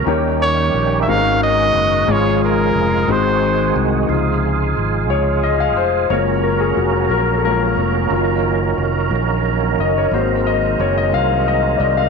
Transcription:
0.00 2.04 A#3 medium
0.00 1.04 C#4 medium
0.06 0.70 D#2 medium
0.06 1.04 D#3 medium
0.06 2.07 D#3 medium
0.06 1.07 G3 medium
0.06 1.07 C#4 medium
0.06 1.06 D#4 medium
0.06 1.08 G4 medium
0.06 1.07 G4 medium
0.06 1.08 A#4 medium
0.06 1.09 C#5 medium
0.42 0.97 C#5 medium
0.74 1.05 A#1 medium
1.02 1.11 E5 medium
1.06 1.71 G#1 medium
1.06 2.04 G#2 medium
1.06 4.06 G#3 medium
1.06 1.13 C4 soft
1.06 2.07 C#4 medium
1.06 2.08 D#4 medium
1.06 2.08 F#4 medium
1.06 2.08 G#4 medium
1.06 2.09 A#4 medium
1.06 1.42 F5 loud
1.13 2.07 C#4 medium
1.44 2.13 D#5 loud
1.75 2.05 F#1 medium
2.07 2.71 G#1 medium
2.07 3.05 G#2 medium
2.07 3.08 C#3 medium
2.07 3.08 F3 medium
2.07 3.08 G#3 medium
2.07 3.09 C#4 soft
2.07 3.08 F4 medium
2.07 3.09 F4 soft
2.07 4.07 G#4 medium
2.07 3.08 G#4 medium
2.07 3.10 C#5 medium
2.11 2.43 C#5 medium
2.44 3.13 A#4 medium
2.75 3.06 F1 medium
3.07 3.71 G#1 medium
3.07 4.05 G#2 medium
3.07 4.08 D#3 medium
3.07 4.09 C4 medium
3.07 4.08 C4 medium
3.07 4.09 D#4 medium
3.07 4.09 F#4 medium
3.07 4.10 G#4 medium
3.07 4.10 C5 medium
3.12 3.86 C5 medium
3.76 4.07 C2 medium
4.09 4.72 C#2 medium
4.09 6.07 C3 soft
4.09 6.07 F3 soft
4.09 6.08 G#3 soft
4.09 6.07 D#4 soft
4.09 6.09 F4 medium
4.09 6.08 G#4 medium
4.77 5.10 G#1 medium
5.10 5.77 C#2 medium
5.10 5.41 C#5 medium
5.43 5.61 D#5 medium
5.60 5.76 F5 medium
5.77 6.08 F1 medium
5.77 6.11 C5 medium
6.10 6.73 F#1 medium
6.10 12.09 F#3 medium
6.10 7.07 G#3 soft
6.10 7.07 A#3 soft
6.10 10.09 A#3 medium
6.10 10.09 C#4 medium
6.10 7.07 F4 soft
6.10 12.09 A#4 medium
6.10 6.45 C#5 medium
6.43 6.61 A#4 medium
6.60 6.78 G#4 medium
6.77 7.08 F1 medium
6.77 7.12 F#4 medium
7.10 7.74 A#1 medium
7.10 7.17 A#4 medium
7.38 7.45 A4 medium
7.45 7.75 G#3 soft
7.45 7.75 A#3 soft
7.45 7.75 F4 soft
7.45 9.08 A#4 medium
7.77 8.08 F1 medium
8.11 8.74 F#1 medium
8.11 12.09 D#3 medium
8.11 9.08 F#3 soft
8.11 9.09 C#4 soft
8.11 9.09 F4 medium
8.78 9.09 F1 medium
9.11 9.75 A#1 medium
9.79 10.10 F#1 medium
9.79 9.97 D#5 medium
9.98 10.13 C#5 medium
10.11 10.75 G#1 medium
10.11 12.09 G#3 medium
10.11 10.57 A#3 soft
10.11 10.58 C4 soft
10.11 12.09 C4 medium
10.11 10.58 F#4 medium
10.11 10.48 C5 medium
10.47 10.78 D#5 medium
10.79 11.11 F#1 medium
10.79 10.98 C#5 medium
10.98 11.03 D#5 medium
11.13 11.76 C2 medium
11.13 11.48 F5 medium
11.48 11.78 D#5 medium
11.77 12.09 C2 medium
11.77 11.81 D5 medium
11.77 11.98 D#5 medium
11.97 12.09 F5 medium

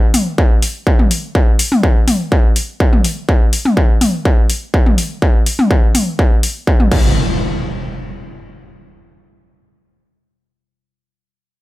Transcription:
0.14 open hi-hat loud
0.14 mid tom medium
0.38 kick loud
0.62 open hi-hat loud
0.87 kick loud
0.99 mid tom medium
1.11 open hi-hat loud
1.35 kick loud
1.59 open hi-hat loud
1.72 mid tom medium
1.83 kick loud
2.08 open hi-hat loud
2.08 mid tom medium
2.32 kick loud
2.56 open hi-hat loud
2.80 kick loud
2.93 mid tom medium
3.04 open hi-hat loud
3.29 kick loud
3.53 open hi-hat loud
3.65 mid tom medium
3.77 kick loud
4.01 open hi-hat loud
4.01 mid tom medium
4.25 kick loud
4.50 open hi-hat loud
4.74 kick loud
4.86 mid tom medium
4.98 open hi-hat loud
5.22 kick loud
5.46 open hi-hat medium
5.59 mid tom medium
5.71 kick loud
5.95 open hi-hat loud
5.95 mid tom medium
6.19 kick loud
6.43 open hi-hat loud
6.67 kick loud
6.80 mid tom medium
6.92 kick loud
6.92 crash medium
6.92 impact medium

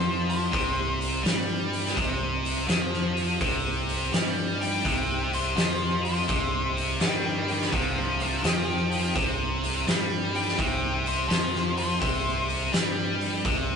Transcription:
0.00 0.49 F2 medium
0.00 0.51 F3 medium
0.00 0.25 G4 medium
0.00 0.27 C6 medium
0.30 0.97 G4 medium
0.30 0.99 C6 medium
0.30 open hi-hat soft
0.52 1.21 C2 medium
0.52 1.24 C3 medium
0.52 kick loud
0.52 open hi-hat medium
1.01 open hi-hat soft
1.23 1.92 G2 medium
1.23 1.95 G3 loud
1.23 snare loud
1.23 open hi-hat medium
1.73 open hi-hat soft
1.86 snare soft
1.96 2.65 C2 medium
1.96 2.67 C3 loud
1.96 kick medium
1.96 open hi-hat medium
2.45 open hi-hat soft
2.68 3.36 F2 medium
2.68 3.40 F3 loud
2.68 snare loud
2.68 open hi-hat medium
2.94 snare soft
3.17 open hi-hat soft
3.41 4.09 C2 medium
3.41 4.12 C3 medium
3.41 kick medium
3.41 open hi-hat medium
3.89 open hi-hat soft
4.12 4.80 G2 medium
4.12 4.83 G3 medium
4.12 snare medium
4.12 open hi-hat medium
4.61 5.29 D#4 medium
4.61 5.31 G5 medium
4.61 open hi-hat medium
4.84 5.53 C2 medium
4.84 5.56 C3 medium
4.84 kick medium
4.84 open hi-hat medium
5.33 6.01 G4 medium
5.33 6.03 C6 medium
5.33 open hi-hat soft
5.56 6.24 F2 medium
5.56 6.27 F3 loud
5.56 snare loud
5.56 open hi-hat medium
6.05 6.72 G4 medium
6.05 6.74 C6 medium
6.05 open hi-hat soft
6.28 6.96 C2 medium
6.28 6.99 C3 medium
6.28 kick medium
6.28 open hi-hat medium
6.77 open hi-hat soft
7.00 7.68 G2 medium
7.00 7.71 G3 medium
7.00 7.24 D#4 medium
7.00 7.24 A#4 medium
7.00 7.24 G5 medium
7.00 snare loud
7.00 open hi-hat medium
7.25 7.47 D#4 medium
7.25 7.47 A#4 medium
7.25 7.48 G5 medium
7.48 7.71 D#4 medium
7.48 7.72 A#4 medium
7.48 7.72 G5 medium
7.48 open hi-hat soft
7.62 snare soft
7.72 8.40 C2 medium
7.72 8.43 C3 medium
7.72 7.95 C4 medium
7.72 7.96 C5 medium
7.72 kick medium
7.72 open hi-hat medium
7.76 7.97 F5 medium
7.98 8.19 D4 medium
7.98 8.19 C5 medium
7.98 8.20 F5 medium
8.20 8.43 D4 medium
8.20 8.43 C5 medium
8.20 8.44 F5 medium
8.20 open hi-hat soft
8.44 9.11 F2 medium
8.44 9.15 F3 medium
8.44 9.12 D#4 medium
8.44 9.15 G5 medium
8.44 snare loud
8.44 open hi-hat medium
8.92 open hi-hat soft
9.15 9.83 C2 medium
9.15 9.86 C3 medium
9.15 kick loud
9.15 open hi-hat medium
9.64 open hi-hat soft
9.86 10.54 G2 medium
9.86 10.58 G3 medium
9.86 snare loud
9.86 open hi-hat medium
10.35 11.03 D#4 medium
10.35 11.04 G5 medium
10.35 open hi-hat soft
10.48 snare soft
10.57 11.26 C2 medium
10.57 11.28 C3 medium
10.57 kick medium
10.57 open hi-hat medium
11.06 11.74 G4 medium
11.06 11.76 C6 medium
11.06 open hi-hat soft
11.29 11.97 F2 medium
11.29 12.00 F3 medium
11.29 snare loud
11.29 open hi-hat medium
11.55 snare soft
11.78 12.46 G4 medium
11.78 12.47 C6 medium
11.78 open hi-hat medium
12.00 12.69 C2 medium
12.00 12.72 C3 medium
12.00 kick medium
12.00 open hi-hat medium
12.49 open hi-hat soft
12.72 13.41 G2 medium
12.72 13.44 G3 medium
12.72 snare loud
12.72 open hi-hat medium
13.21 open hi-hat soft
13.44 13.76 C2 medium
13.44 13.76 C3 medium
13.44 kick loud
13.44 open hi-hat soft

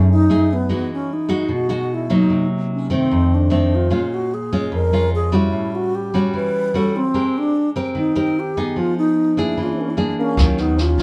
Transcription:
0.00 0.67 F#2 medium
0.00 0.25 A3 medium
0.00 0.25 D#4 medium
0.00 0.26 G#4 medium
0.12 0.55 D#4 medium
0.30 0.55 A3 medium
0.30 0.55 D#4 medium
0.30 0.55 G#4 medium
0.53 0.91 B3 medium
0.69 1.47 E3 soft
0.69 1.09 G#3 soft
0.69 1.09 D#4 soft
0.69 1.09 F#4 soft
0.94 1.15 C#4 medium
1.13 1.51 D#4 medium
1.29 1.66 G#3 medium
1.29 1.66 D#4 medium
1.29 1.66 F#4 medium
1.48 2.27 B2 soft
1.54 1.96 F#4 medium
1.69 2.06 G#3 medium
1.69 2.06 D#4 medium
1.69 2.06 F#4 medium
1.94 2.17 E4 medium
2.10 2.87 F#3 medium
2.10 2.87 A#3 medium
2.10 2.87 D#4 medium
2.15 2.46 D#4 medium
2.30 3.08 C3 soft
2.74 2.91 C#4 medium
2.90 3.47 D#3 medium
2.90 3.47 A3 medium
2.90 3.48 C4 medium
2.94 3.36 C4 medium
3.11 3.89 F2 medium
3.35 3.77 D4 medium
3.50 3.87 D#3 medium
3.50 3.87 A3 medium
3.50 3.88 C4 medium
3.75 4.15 F4 medium
3.90 4.69 A#2 soft
3.90 4.31 G#3 soft
3.90 4.31 C#4 soft
3.90 4.31 F4 medium
4.14 4.36 F#4 medium
4.34 4.73 G#4 medium
4.53 4.89 G#3 medium
4.53 4.89 C#4 medium
4.53 4.89 F4 medium
4.72 5.50 F2 medium
4.72 5.10 A#4 loud
4.93 5.30 G#3 medium
4.93 5.29 C#4 soft
4.93 5.30 F4 medium
5.15 5.37 G#4 loud
5.32 6.10 G3 medium
5.32 6.10 C#4 medium
5.32 5.77 E4 medium
5.32 6.10 F#4 medium
5.52 6.31 A2 soft
5.75 5.96 F#4 medium
5.95 6.34 G4 medium
6.14 6.71 G3 medium
6.14 6.71 C#4 medium
6.14 6.71 F#4 medium
6.34 7.12 E3 soft
6.34 6.78 B4 loud
6.74 7.00 G3 medium
6.74 7.00 C#4 medium
6.74 7.00 F#4 medium
6.74 6.98 A4 medium
6.96 7.39 C4 medium
7.14 7.93 G#3 soft
7.14 7.54 C4 soft
7.14 7.54 G4 medium
7.14 7.55 A#4 soft
7.38 7.70 D4 loud
7.76 8.12 C4 medium
7.76 8.13 G4 medium
7.76 8.12 A#4 medium
7.95 8.74 D#3 medium
7.95 8.41 D#4 medium
8.15 8.52 C4 medium
8.15 8.53 G4 medium
8.15 8.53 A#4 medium
8.40 8.79 G4 medium
8.57 9.34 B3 medium
8.57 9.34 D#4 medium
8.57 9.34 G#4 medium
8.76 9.55 F3 soft
8.76 8.97 F4 medium
8.98 9.41 D#4 medium
9.37 9.94 A#3 medium
9.37 9.94 D4 medium
9.37 9.64 E4 medium
9.37 9.95 G#4 medium
9.57 10.36 E3 soft
9.62 9.70 C#4 medium
9.62 9.74 F4 medium
9.70 9.81 C#4 medium
9.70 9.82 E4 medium
9.80 9.91 A#3 medium
9.80 9.92 C#4 medium
9.89 9.97 C#4 medium
9.89 9.98 E4 medium
9.97 10.34 A#3 soft
9.97 10.34 D4 medium
9.97 10.34 G#4 medium
10.19 10.61 A#3 medium
10.19 10.61 C#4 medium
10.37 10.94 D#2 loud
10.37 11.03 D#3 soft
10.37 10.78 F#3 soft
10.37 10.78 C#4 soft
10.37 10.78 F4 medium
10.37 kick medium
10.37 cross-stick medium
10.37 snare soft
10.58 10.80 B3 medium
10.58 10.82 D#4 medium
10.58 snare soft
10.78 11.03 C#4 medium
10.78 11.03 F4 medium
10.78 snare soft
10.98 11.03 A#1 medium
10.98 11.03 F#3 medium
10.98 kick soft
10.98 snare soft

